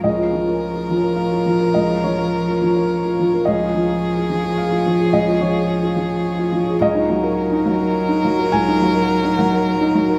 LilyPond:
<<
  \new Staff \with { instrumentName = "Violin" } { \time 3/4 \key bes \minor \tempo 4 = 106 bes'2.~ | bes'2. | aes'2.~ | aes'2. |
bes'2.~ | bes'2. | }
  \new Staff \with { instrumentName = "Ambient pad" } { \time 3/4 \key bes \minor <f' bes' des''>2.~ | <f' bes' des''>2. | <f' aes' des''>2.~ | <f' aes' des''>2. |
<ees' ges' bes'>2.~ | <ees' ges' bes'>2. | }
  \new Staff \with { instrumentName = "Felt piano" } { \time 3/4 \key bes \minor << { ees''2 f''4 | ees''8 des''2~ des''8 | ees''2 f''4 | ees''8 des''2~ des''8 |
ees''2. | aes''4. ges''4. | } \\ { des,16 f'16 f16 bes'8 f'16 f16 bes'8 f'16 f16 bes'16 | des,16 f'16 f16 bes'8 f'16 f16 bes'8 f'16 f16 bes'16 | des,16 f'16 f16 aes'8 f'16 f16 aes'8 f'16 f16 aes'16 | des,16 f'16 f16 aes'8 f'16 f16 aes'8 f'16 f16 aes'16 |
des,16 ees'16 ges16 bes'8 ees'16 ges16 bes'8 ees'16 ges16 bes'16 | des,16 ees'16 ges16 bes'8 ees'16 ges16 bes'8 ees'16 ges16 bes'16 | } >> }
  \new Staff \with { instrumentName = "Cello" } { \clef bass \time 3/4 \key bes \minor f2.~ | f2. | f2.~ | f2. |
ges2.~ | ges2. | }
>>